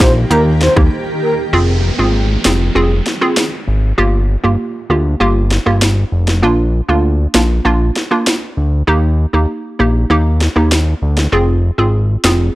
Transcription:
Already playing: ambient pad D#3 A#3 G4
0.00 analog synth bass A#1, synth pluck A#3 D#4 G4, soft synth lead C5, kick, snare
0.30 analog synth bass D#2, synth pluck A#3 D#4 G4, soft synth lead A#4, closed hi-hat
0.61 soft synth lead C5, snare
0.76 analog synth bass D#2, synth pluck A#3 D#4 G4, kick, cross-stick
1.22 soft synth lead A#4
1.53 analog synth bass F1, synth pluck C4 F4 G#4, downlifter
1.99 analog synth bass G#1, synth pluck C4 F4 G#4
2.45 analog synth bass F1, synth pluck C4 F4 G#4, snare
2.75 analog synth bass F1, synth pluck C4 F4 G#4
3.06 snare
3.21 synth pluck C4 F4 G#4, cross-stick
3.37 snare
3.68 analog synth bass G#1
3.98 analog synth bass G1, synth pluck A#3 F4 G4
4.44 analog synth bass G1, synth pluck A#3 F4 G4
4.90 analog synth bass D2, synth pluck A#3 F4 G4
5.20 analog synth bass G1, synth pluck A#3 F4 G4
5.51 snare
5.66 analog synth bass G1, synth pluck A#3 F4 G4, cross-stick
5.82 snare
6.12 analog synth bass F1
6.28 snare
6.43 analog synth bass A#1, synth pluck A#3 D4 F4
6.89 analog synth bass D2, synth pluck A#3 D4 F4
7.34 analog synth bass A#1, synth pluck A#3 D4 F4, snare
7.65 analog synth bass A#1, synth pluck A#3 D4 F4
7.96 snare
8.11 synth pluck A#3 D4 F4, cross-stick
8.27 snare
8.57 analog synth bass D2
8.87 analog synth bass D#2, synth pluck A#3 D#4 G4
9.33 analog synth bass D#2, synth pluck A#3 D#4 G4
9.79 analog synth bass A#1, synth pluck A#3 D#4 G4
10.10 analog synth bass D#2, synth pluck A#3 D#4 G4
10.41 snare
10.56 analog synth bass D#2, synth pluck A#3 D#4 G4, cross-stick
10.72 snare
11.02 analog synth bass D2
11.17 snare
11.32 analog synth bass F1, synth pluck C4 F4 G#4
11.78 analog synth bass G#1, synth pluck C4 F4 G#4
12.24 analog synth bass F1, synth pluck C4 F4 G#4, snare

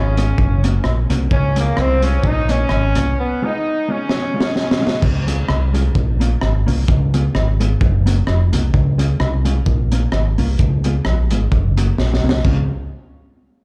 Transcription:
Already playing: fingered electric bass G#1, horn section C#4
0.17 clean electric guitar G#3 B3 F4, closed hi-hat
0.38 fingered electric bass F#1, kick
0.64 clean electric guitar A#3 C#4 F#4, closed hi-hat
0.84 fingered electric bass A#1, cross-stick
1.10 fingered electric bass C2, clean electric guitar A#3 C#4 F#4, closed hi-hat
1.31 fingered electric bass C#2, horn section C#4, kick
1.56 clean electric guitar G#3 C#4 F4, horn section A#3, closed hi-hat
1.77 fingered electric bass C2, horn section C4, cross-stick
2.02 clean electric guitar G#3 C#4 F4, horn section C#4, closed hi-hat
2.24 fingered electric bass A#1, horn section D#4, kick
2.49 clean electric guitar A#3 C#4 F4, horn section C#4, closed hi-hat
2.69 fingered electric bass G#1, cross-stick
2.95 fingered electric bass C2, clean electric guitar A#3 C#4 F4, closed hi-hat
3.18 horn section B3
3.42 clean electric guitar G#3 B3 F4, horn section D#4
3.88 clean electric guitar G#3 B3 F4, horn section C#4
4.09 snare
4.34 clean electric guitar G#3 C#4 F4
4.41 snare
4.56 snare
4.71 snare
4.81 clean electric guitar G#3 C#4 F4
4.87 snare
5.02 fingered electric bass C#2, kick, crash
5.27 clean electric guitar G#3 C#4 F4, closed hi-hat
5.48 fingered electric bass C2, cross-stick
5.74 clean electric guitar G#3 C#4 F4, closed hi-hat
5.95 fingered electric bass A#1, kick
6.20 clean electric guitar A#3 C#4 F4, closed hi-hat
6.41 fingered electric bass G#1, cross-stick
6.66 fingered electric bass C2, clean electric guitar A#3 C#4 F4, open hi-hat
6.88 fingered electric bass C#2, kick, hi-hat pedal
7.14 clean electric guitar G#3 B3 F4, closed hi-hat
7.35 fingered electric bass G#1, cross-stick
7.60 clean electric guitar G#3 B3 F4, closed hi-hat
7.81 fingered electric bass F#1, kick
8.06 clean electric guitar A#3 C#4 F#4, closed hi-hat
8.27 fingered electric bass F1, cross-stick
8.53 fingered electric bass C2, clean electric guitar A#3 C#4 F#4, closed hi-hat
8.74 fingered electric bass C#2, kick
8.98 clean electric guitar G#3 C#4 F4, closed hi-hat
9.20 fingered electric bass C2, cross-stick
9.45 clean electric guitar G#3 C#4 F4, closed hi-hat
9.66 fingered electric bass A#1, kick
9.92 clean electric guitar A#3 C#4 F4, closed hi-hat
10.12 fingered electric bass G#1, cross-stick
10.38 fingered electric bass C2, clean electric guitar A#3 C#4 F4, open hi-hat
10.59 fingered electric bass C#2, kick, hi-hat pedal
10.84 clean electric guitar G#3 B3 F4, closed hi-hat
11.05 fingered electric bass A#1, cross-stick
11.31 fingered electric bass G#1, clean electric guitar G#3 B3 F4, closed hi-hat
11.52 fingered electric bass F#1, kick
11.77 clean electric guitar A#3 C#4 F#4, closed hi-hat
11.98 fingered electric bass A#1, snare
12.14 snare
12.23 fingered electric bass C2, clean electric guitar A#3 C#4 F#4
12.29 snare
12.44 fingered electric bass C#2, clean electric guitar G#3 C#4 F4, kick, crash

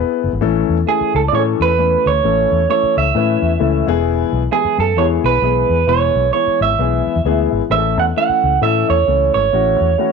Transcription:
Already playing: grand piano B3 E4 G#4 B4 B5
0.24 fingered electric bass F#1
0.33 fingered electric bass G#1
0.41 fingered electric bass A1, grand piano E3 A3 C#4 E4 A4
0.69 fingered electric bass E2
0.87 grand piano E3 A3 C#4 E4 A4, clean electric guitar G#4
1.01 muted fingered electric bass stroke
1.14 fingered electric bass C#2, clean electric guitar A4
1.28 fingered electric bass A2, grand piano E3 A3, clean electric guitar D5
1.33 grand piano C#4 E4 G#4, clean electric guitar C#5
1.39 grand piano A4
1.60 fingered electric bass E2, clean electric guitar B4
1.78 grand piano E3 A3 C#4 E4 B4
2.06 fingered electric bass D2, clean electric guitar C#5
2.24 fingered electric bass A1, grand piano E3 A3 C#4 E4 A4
2.52 fingered electric bass E2
2.69 grand piano E3 A3 C#4 E4 A4, clean electric guitar C#5
2.83 muted fingered electric bass stroke
2.97 fingered electric bass C#2, clean electric guitar E5
3.15 fingered electric bass A2, grand piano E3 A3 C#4 E4 B4
3.42 fingered electric bass E2
3.59 fingered electric bass C#2, grand piano E3 A3 C#4 E4 A4
3.87 fingered electric bass E1, grand piano E3 G#3 B3 E4 G#4
4.33 fingered electric bass B1
4.51 grand piano E3 G#3 B3 E4 G4, clean electric guitar G#4
4.58 grand piano G#4
4.65 muted fingered electric bass stroke
4.78 fingered electric bass F#2, clean electric guitar A4
4.96 fingered electric bass E2, grand piano E3 G#3 B3 E4 G4, clean electric guitar C#5
5.04 grand piano G#4
5.24 fingered electric bass B1, clean electric guitar B4
5.42 fingered electric bass B1, grand piano E3 G#3 B3 E4 G#4
5.69 fingered electric bass E2
5.87 fingered electric bass E1, grand piano E3 G#3 B3 E4 G#4, clean electric guitar C#5
6.15 fingered electric bass B1
6.33 grand piano E3 G#3 B3 E4 G#4, clean electric guitar C#5
6.47 muted fingered electric bass stroke
6.61 fingered electric bass G#1, clean electric guitar E5
6.79 fingered electric bass B1, grand piano E3 G#3 B3 E4 G#4
7.07 muted fingered electric bass stroke
7.16 fingered electric bass E2
7.25 fingered electric bass D2, grand piano E3 G#3 B3 E4 G#4
7.52 fingered electric bass G#1
7.70 fingered electric bass A1, grand piano E3 A3 C#4 E4 G#4, clean electric guitar E5
7.78 grand piano A4
7.98 fingered electric bass E2, clean electric guitar F#5
8.16 grand piano E3 A3 C#4 E4 A4, clean electric guitar F#5
8.29 muted fingered electric bass stroke
8.44 fingered electric bass C#2
8.61 fingered electric bass A2, grand piano E3 A3 C#4 E4 A4, clean electric guitar E5
8.89 fingered electric bass E2, clean electric guitar C#5
9.07 fingered electric bass C#2, grand piano E3 A3 C#4 E4 A4
9.34 fingered electric bass G#1, clean electric guitar C#5
9.52 fingered electric bass A1, grand piano E3 A3 C#4 E4 F#4
9.81 fingered electric bass E2
9.98 grand piano E3 A3 C#4 E4 F#4

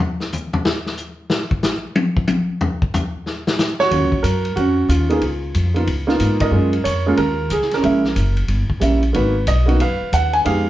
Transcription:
0.20 snare
0.32 floor tom, hi-hat pedal
0.53 floor tom
0.65 snare
0.86 snare
0.97 hi-hat pedal
1.30 snare
1.51 kick
1.63 snare, hi-hat pedal
1.96 high tom
2.17 kick
2.27 hi-hat pedal, high tom
2.61 floor tom
2.82 kick
2.94 floor tom, hi-hat pedal
3.26 snare
3.47 snare
3.59 snare, hi-hat pedal
3.79 grand piano F#4 C#5, snare
3.90 upright bass D#2, grand piano F#3 A#3 C#4 F4, kick, ride
4.02 upright bass C#2
4.12 upright bass A#1, kick
4.23 upright bass F#2, grand piano A#4, kick, hi-hat pedal, ride
4.45 ride
4.56 upright bass F2, grand piano C#4 F#4, kick, ride
4.89 upright bass D#2, grand piano F4, kick, hi-hat pedal, ride
5.10 grand piano A#3 B3 D#4 F4 G#4, ride
5.21 upright bass C#2, kick, ride
5.55 upright bass F2, kick, hi-hat pedal, ride
5.74 grand piano A#3 B3 D#4 F4, ride
5.87 upright bass C#2, kick, ride
6.07 grand piano A#3 B3 D#4 F4, snare
6.20 upright bass G#2, kick, hi-hat pedal, ride
6.40 grand piano A#4 D#5, kick, ride
6.51 upright bass F#2, grand piano G#3 A#3 C#4 F4
6.73 ride
6.84 upright bass F2, grand piano C#5, kick, hi-hat pedal, ride
7.06 grand piano G#3 A#3 C#4 F4
7.17 upright bass D#2, grand piano F4 A#4, kick, ride
7.50 upright bass C#2, grand piano G#4, kick, hi-hat pedal, ride
7.62 snare
7.71 grand piano A#4, snare, ride
7.76 grand piano C#4
7.82 upright bass A#1, grand piano G#3 A#3 C#4 E4, kick, ride
8.05 snare
8.16 upright bass F#1, kick, hi-hat pedal, ride
8.37 ride
8.48 upright bass G1, kick, ride
8.70 muted upright bass stroke, kick
8.80 upright bass A#1, grand piano G3 A#3 C#4 E4, kick, hi-hat pedal, ride
9.03 ride
9.13 upright bass G#1, grand piano A#3 B3 D#4 F#4 B4, kick, ride
9.47 upright bass B1, grand piano D#5, kick, hi-hat pedal, ride
9.66 grand piano A#3 B3 D#4 F#4, ride
9.80 upright bass F#2, grand piano B4 F5, kick, ride
10.01 muted upright bass stroke
10.12 upright bass D#2, grand piano F#5, kick, hi-hat pedal, ride
10.33 grand piano G#5, ride
10.45 upright bass F2, grand piano G#3 B3 D#4 G4 G#4 F5, kick, ride

